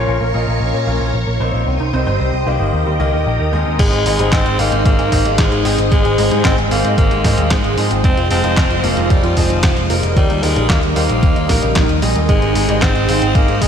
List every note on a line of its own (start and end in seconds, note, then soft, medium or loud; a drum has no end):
0.00 0.15 A#2 medium
0.00 0.15 A#3 medium
0.00 0.15 C#4 medium
0.00 0.15 F4 medium
0.00 1.65 A#4 medium
0.00 0.15 C#5 loud
0.00 1.65 C#5 medium
0.00 1.65 F5 medium
0.00 1.65 C#6 medium
0.07 0.18 A#1 loud
0.07 0.16 F3 medium
0.21 0.31 A#1 medium
0.21 0.29 A#3 medium
0.34 0.45 A#1 medium
0.34 0.84 A#2 medium
0.34 0.84 A#3 medium
0.34 0.39 A#3 medium
0.34 0.84 C#4 medium
0.34 0.84 F4 medium
0.34 0.84 D#5 medium
0.47 0.58 A#1 medium
0.47 0.56 A#3 medium
0.61 0.71 A#1 medium
0.61 0.69 A#3 medium
0.74 0.84 A#2 medium
0.74 0.79 C#4 loud
0.87 0.98 A#1 medium
0.87 1.08 A#2 medium
0.87 1.08 A#3 medium
0.87 0.92 A#3 loud
0.87 1.08 C#4 medium
0.87 1.08 F4 medium
0.87 1.08 C#5 medium
1.01 1.11 A#1 medium
1.01 1.09 F3 medium
1.14 1.24 A#1 loud
1.14 1.22 F3 medium
1.27 1.37 A#1 medium
1.27 1.35 A#3 medium
1.40 1.51 A#1 medium
1.40 1.74 C3 medium
1.40 1.74 G3 medium
1.40 1.45 A#3 medium
1.40 1.74 C4 medium
1.40 1.74 D#4 medium
1.40 1.74 C5 medium
1.54 1.64 A#1 medium
1.54 1.62 A#3 medium
1.67 1.77 C2 loud
1.67 1.75 C4 medium
1.67 2.72 C5 medium
1.67 3.77 D#5 medium
1.67 3.77 G5 medium
1.67 2.72 D#6 medium
1.80 1.91 C2 medium
1.80 1.85 D#4 loud
1.93 2.04 C2 medium
1.93 2.05 C3 medium
1.93 2.05 G3 medium
1.93 2.05 C4 medium
1.93 1.99 C4 loud
1.93 2.05 D#4 medium
1.93 2.05 C5 loud
2.07 2.17 G1 medium
2.07 2.27 C3 medium
2.07 2.27 G3 medium
2.07 2.15 G3 medium
2.07 2.27 C4 medium
2.07 2.27 D#4 medium
2.07 2.27 C5 loud
2.20 2.30 C2 loud
2.20 2.28 G3 medium
2.33 2.44 C2 medium
2.33 2.42 C4 medium
2.47 2.57 C2 medium
2.47 2.96 D#3 medium
2.47 2.97 A#3 medium
2.47 2.52 C4 medium
2.47 2.97 D#4 medium
2.47 2.97 G4 medium
2.47 2.97 F5 medium
2.60 2.70 G1 medium
2.60 2.68 C4 medium
2.73 2.84 D#2 medium
2.73 2.81 D#3 medium
2.73 3.78 A#4 medium
2.73 3.78 D#6 medium
2.86 2.97 D#2 medium
2.86 2.91 G3 loud
3.00 3.10 C#2 medium
3.00 3.10 D#3 medium
3.00 3.05 D#3 loud
3.00 3.10 A#3 medium
3.00 3.10 D#4 medium
3.00 3.10 G4 medium
3.00 3.10 D#5 loud
3.13 3.23 D#2 medium
3.13 3.21 A#2 medium
3.13 3.50 D#3 medium
3.13 3.50 A#3 medium
3.13 3.50 D#4 medium
3.13 3.50 G4 medium
3.13 3.50 D#5 medium
3.26 3.37 A#1 loud
3.26 3.35 A#2 medium
3.40 3.50 D#2 medium
3.40 3.48 D#3 medium
3.53 3.63 D#2 medium
3.53 4.03 G#2 medium
3.53 3.58 D#3 medium
3.53 4.03 C4 medium
3.53 4.03 D#4 medium
3.53 4.03 G#4 medium
3.53 4.03 D#5 loud
3.66 3.76 D#2 medium
3.66 3.74 D#3 medium
3.79 3.90 G#1 loud
3.79 3.84 G#3 medium
3.79 10.13 G#3 medium
3.79 4.34 G#3 loud
3.79 8.00 D#4 medium
3.79 10.13 C5 medium
3.79 13.68 D#5 medium
3.79 kick loud
3.79 closed hi-hat medium
3.79 crash loud
3.92 4.03 G#1 medium
3.92 3.98 G#4 medium
3.92 closed hi-hat soft
4.06 4.16 G#1 medium
4.06 4.18 G#2 loud
4.06 4.17 G#2 medium
4.06 4.17 C4 medium
4.06 4.17 D#4 medium
4.06 4.17 G#4 medium
4.06 4.17 D#5 loud
4.06 open hi-hat loud
4.19 4.30 G#1 medium
4.19 4.40 G#2 loud
4.19 4.27 G3 medium
4.19 4.40 C4 medium
4.19 4.40 D#4 medium
4.19 4.40 G#4 medium
4.19 4.40 D#5 loud
4.19 closed hi-hat medium
4.32 4.43 G#1 loud
4.32 4.61 C4 loud
4.32 4.37 D#4 medium
4.32 kick loud
4.32 snare loud
4.32 clap loud
4.32 closed hi-hat medium
4.46 4.56 G#1 medium
4.46 4.54 G#3 medium
4.46 closed hi-hat soft
4.59 4.69 G#1 medium
4.59 5.09 G#2 medium
4.59 4.85 A#3 loud
4.59 5.09 C4 medium
4.59 4.64 C4 medium
4.59 5.09 D#4 medium
4.59 5.09 G#4 medium
4.59 5.09 F5 medium
4.59 open hi-hat medium
4.72 4.83 G#1 medium
4.72 4.77 C4 medium
4.72 closed hi-hat medium
4.86 4.96 G#1 loud
4.86 4.91 G#3 medium
4.86 5.40 A#3 loud
4.86 kick loud
4.86 closed hi-hat medium
4.99 5.09 G#2 medium
4.99 5.04 G#4 medium
4.99 closed hi-hat soft
5.12 5.22 G#1 medium
5.12 5.33 G#2 medium
5.12 5.25 G#2 loud
5.12 5.33 C4 medium
5.12 5.33 D#4 medium
5.12 5.33 G#4 medium
5.12 5.33 D#5 loud
5.12 kick medium
5.12 open hi-hat loud
5.25 5.36 G#1 medium
5.25 5.34 G3 medium
5.25 closed hi-hat medium
5.38 5.49 G#1 loud
5.38 5.78 G#3 loud
5.38 5.44 D#4 medium
5.38 kick loud
5.38 snare loud
5.38 clap loud
5.38 closed hi-hat medium
5.52 5.62 G#1 medium
5.52 5.60 G#3 medium
5.52 closed hi-hat soft
5.65 5.76 G#1 medium
5.65 5.98 G#2 medium
5.65 5.70 C4 medium
5.65 5.98 C4 medium
5.65 5.98 D#4 medium
5.65 5.98 G#4 medium
5.65 5.98 D#5 loud
5.65 open hi-hat loud
5.78 5.89 G#1 medium
5.78 5.83 C4 medium
5.78 closed hi-hat medium
5.92 6.02 G#1 loud
5.92 6.41 G#3 loud
5.92 5.97 G#3 medium
5.92 kick loud
5.92 closed hi-hat medium
6.05 6.15 G#1 medium
6.05 6.10 G#4 medium
6.05 closed hi-hat soft
6.18 6.29 G#1 medium
6.18 6.31 G#2 loud
6.18 6.30 G#2 medium
6.18 6.30 C4 medium
6.18 6.30 D#4 medium
6.18 6.30 G#4 medium
6.18 6.30 D#5 loud
6.18 open hi-hat loud
6.31 6.42 G#2 medium
6.31 6.52 G#2 loud
6.31 6.40 G3 medium
6.31 6.52 C4 medium
6.31 6.52 D#4 medium
6.31 6.52 G#4 medium
6.31 6.52 D#5 loud
6.31 closed hi-hat medium
6.45 6.55 G#1 loud
6.45 6.57 C4 loud
6.45 6.50 D#4 medium
6.45 kick loud
6.45 snare loud
6.45 clap loud
6.45 closed hi-hat medium
6.58 6.68 G#1 medium
6.58 6.66 G#3 medium
6.58 closed hi-hat soft
6.71 6.82 G#1 medium
6.71 7.21 G#2 medium
6.71 6.96 A#3 medium
6.71 7.21 C4 medium
6.71 6.76 C4 medium
6.71 7.21 D#4 medium
6.71 7.21 G#4 medium
6.71 7.21 F5 medium
6.71 open hi-hat medium
6.85 6.95 G#2 medium
6.85 6.90 C4 medium
6.85 closed hi-hat medium
6.98 7.08 G#1 loud
6.98 7.03 G#3 medium
6.98 7.53 A#3 loud
6.98 kick loud
6.98 closed hi-hat medium
7.11 7.22 G#1 medium
7.11 7.16 G#4 medium
7.11 closed hi-hat soft
7.24 7.45 G#2 medium
7.24 7.35 G#2 loud
7.24 7.37 G#2 loud
7.24 7.45 C4 medium
7.24 7.45 D#4 medium
7.24 7.45 G#4 medium
7.24 7.45 D#5 medium
7.24 kick medium
7.24 snare medium
7.24 open hi-hat loud
7.38 7.48 D#2 medium
7.38 7.46 G3 medium
7.38 closed hi-hat medium
7.51 7.61 G#2 loud
7.51 7.91 G#3 medium
7.51 7.56 D#4 medium
7.51 kick loud
7.51 snare loud
7.51 clap loud
7.51 closed hi-hat medium
7.64 7.75 G#1 medium
7.64 7.73 G#3 medium
7.64 closed hi-hat soft
7.77 7.88 G#2 loud
7.77 8.11 F3 medium
7.77 8.11 C4 medium
7.77 7.83 C4 medium
7.77 8.11 F4 medium
7.77 8.11 G#4 medium
7.77 8.11 D#5 loud
7.77 open hi-hat medium
7.91 8.01 G#1 medium
7.91 7.96 C4 medium
7.91 closed hi-hat medium
8.04 8.15 F1 loud
8.04 8.09 F3 medium
8.04 8.29 C4 loud
8.04 10.14 F4 medium
8.04 kick loud
8.04 closed hi-hat medium
8.17 8.28 F1 medium
8.17 8.22 F4 medium
8.17 closed hi-hat soft
8.31 8.41 F1 medium
8.31 8.43 F2 loud
8.31 8.42 F3 medium
8.31 8.85 C4 loud
8.31 8.42 C4 medium
8.31 8.42 F4 medium
8.31 8.42 G#4 medium
8.31 8.42 D#5 loud
8.31 open hi-hat loud
8.44 8.54 F1 medium
8.44 8.52 D#3 medium
8.44 8.65 F3 loud
8.44 8.65 C4 medium
8.44 8.65 F4 medium
8.44 8.65 G#4 medium
8.44 8.65 D#5 loud
8.44 closed hi-hat medium
8.57 8.68 F1 loud
8.57 8.62 C4 medium
8.57 kick loud
8.57 snare loud
8.57 clap loud
8.57 closed hi-hat medium
8.70 8.81 F1 medium
8.70 8.79 F3 medium
8.70 closed hi-hat soft
8.84 8.94 F1 medium
8.84 9.34 F3 medium
8.84 9.12 A#3 loud
8.84 8.89 A#3 medium
8.84 9.34 C4 medium
8.84 9.34 F4 medium
8.84 9.34 G#4 medium
8.84 9.34 F5 medium
8.84 open hi-hat medium
8.97 9.07 F1 medium
8.97 9.02 A#3 medium
8.97 closed hi-hat medium
9.10 9.21 F1 loud
9.10 9.15 F3 medium
9.10 9.38 G3 medium
9.10 kick loud
9.10 closed hi-hat medium
9.24 9.34 F2 medium
9.24 9.29 F4 medium
9.24 closed hi-hat soft
9.37 9.47 F1 medium
9.37 9.49 F2 loud
9.37 9.58 F3 medium
9.37 9.90 F3 medium
9.37 9.58 C4 medium
9.37 9.58 F4 medium
9.37 9.58 G#4 medium
9.37 9.58 D#5 loud
9.37 kick medium
9.37 open hi-hat loud
9.50 9.61 F1 medium
9.50 9.58 D#3 medium
9.50 closed hi-hat medium
9.63 9.74 F1 loud
9.63 9.68 C4 medium
9.63 kick loud
9.63 snare loud
9.63 clap loud
9.63 closed hi-hat soft
9.77 9.87 F1 medium
9.77 9.85 F3 medium
9.77 closed hi-hat soft
9.90 10.00 F1 loud
9.90 10.23 G3 medium
9.90 9.95 A#3 medium
9.90 10.23 A#3 medium
9.90 10.23 D#4 medium
9.90 10.23 A#4 loud
9.90 open hi-hat medium
10.03 10.14 F1 medium
10.03 10.08 A#3 medium
10.03 closed hi-hat medium
10.16 10.27 D#2 loud
10.16 10.22 D#3 medium
10.16 10.44 G3 loud
10.16 12.27 G3 medium
10.16 13.68 D#4 medium
10.16 12.27 A#4 medium
10.16 kick loud
10.16 closed hi-hat medium
10.30 10.40 D#2 medium
10.30 10.35 D#4 medium
10.30 closed hi-hat soft
10.43 10.56 D#2 loud
10.43 10.54 D#2 medium
10.43 10.54 G3 medium
10.43 10.69 G#3 loud
10.43 10.54 A#3 medium
10.43 10.54 D#4 medium
10.43 10.54 A#4 loud
10.43 open hi-hat loud
10.56 10.67 A#1 medium
10.56 10.65 C#3 medium
10.56 10.77 G3 loud
10.56 10.77 A#3 medium
10.56 10.77 D#4 medium
10.56 10.77 A#4 loud
10.56 closed hi-hat medium
10.69 10.80 D#2 loud
10.69 10.81 A#3 loud
10.69 10.75 A#3 medium
10.69 kick loud
10.69 snare loud
10.69 clap loud
10.69 closed hi-hat medium
10.83 10.93 D#2 medium
10.83 10.91 D#3 medium
10.83 closed hi-hat soft
10.96 11.07 D#2 loud
10.96 11.46 G3 medium
10.96 11.01 G3 medium
10.96 11.72 A#3 loud
10.96 11.46 A#3 medium
10.96 11.46 D#4 medium
10.96 11.46 C5 medium
10.96 open hi-hat medium
11.09 11.20 A#1 medium
11.09 11.15 G3 medium
11.09 closed hi-hat soft
11.23 11.33 D#2 loud
11.23 11.28 D#3 medium
11.23 kick loud
11.23 closed hi-hat medium
11.36 11.47 D#2 medium
11.36 11.41 D#4 medium
11.36 closed hi-hat soft
11.49 11.60 A#1 medium
11.49 11.62 D#2 loud
11.49 11.59 G3 medium
11.49 11.59 A#3 medium
11.49 11.59 D#4 medium
11.49 11.59 A#4 loud
11.49 kick medium
11.49 snare medium
11.49 open hi-hat loud
11.63 11.73 A#1 medium
11.63 11.71 C#3 medium
11.63 11.99 G3 medium
11.63 11.99 A#3 medium
11.63 11.99 D#4 medium
11.63 11.99 A#4 medium
11.63 closed hi-hat medium
11.76 11.86 A#1 loud
11.76 11.81 A#3 medium
11.76 kick loud
11.76 snare loud
11.76 clap loud
11.76 closed hi-hat soft
11.89 12.00 D#2 medium
11.89 11.98 D#3 medium
11.89 closed hi-hat soft
12.02 12.13 A#1 medium
12.02 12.52 G#2 medium
12.02 12.07 G3 medium
12.02 12.52 C4 medium
12.02 12.52 D#4 medium
12.02 12.52 G#4 medium
12.02 12.52 D#5 loud
12.02 open hi-hat medium
12.16 12.26 D#2 medium
12.16 12.21 G3 medium
12.16 closed hi-hat soft
12.29 12.39 G#1 loud
12.29 12.83 G#3 loud
12.29 12.34 G#3 medium
12.29 13.68 G#3 medium
12.29 13.68 C5 medium
12.29 kick loud
12.29 closed hi-hat medium
12.42 12.53 G#1 medium
12.42 12.47 G#4 medium
12.42 closed hi-hat soft
12.55 12.66 G#1 loud
12.55 12.67 G#2 medium
12.55 12.68 G#2 loud
12.55 12.67 C4 medium
12.55 12.67 D#4 medium
12.55 12.67 G#4 medium
12.55 12.67 D#5 loud
12.55 open hi-hat loud
12.69 12.79 G#1 medium
12.69 12.89 G#2 loud
12.69 12.77 G3 medium
12.69 12.90 C4 medium
12.69 12.90 D#4 medium
12.69 12.90 G#4 medium
12.69 12.90 D#5 loud
12.69 closed hi-hat medium
12.82 12.92 G#1 loud
12.82 13.37 C4 loud
12.82 12.87 D#4 medium
12.82 kick loud
12.82 snare loud
12.82 clap loud
12.82 closed hi-hat medium
12.95 13.06 G#1 medium
12.95 13.04 G#3 medium
12.95 closed hi-hat soft
13.09 13.19 G#1 loud
13.09 13.59 G#2 medium
13.09 13.59 C4 medium
13.09 13.14 C4 medium
13.09 13.59 D#4 medium
13.09 13.59 G#4 medium
13.09 13.59 F5 medium
13.09 open hi-hat loud
13.22 13.32 G#1 medium
13.22 13.27 C4 medium
13.22 closed hi-hat medium
13.35 13.46 G#1 loud
13.35 13.40 G#3 medium
13.35 13.63 A#3 loud
13.35 kick loud
13.35 closed hi-hat medium
13.48 13.59 G#2 medium
13.48 13.54 G#4 medium
13.48 closed hi-hat soft
13.62 13.68 G#1 loud
13.62 13.68 G#2 medium
13.62 13.68 G#2 loud
13.62 13.68 G#3 medium
13.62 13.68 C4 medium
13.62 13.68 D#4 medium
13.62 13.68 G#4 medium
13.62 13.68 D#5 medium
13.62 kick medium
13.62 open hi-hat loud